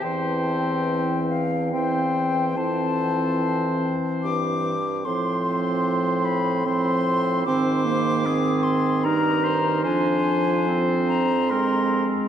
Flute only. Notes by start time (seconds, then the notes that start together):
0.02 G5
1.29 F5
1.73 G5
2.57 A5
4.23 D6
5.05 C6
6.25 B5
6.66 C6
7.46 D6
8.63 C6
9.04 A#5
9.84 G#5
11.08 A#5
11.49 C6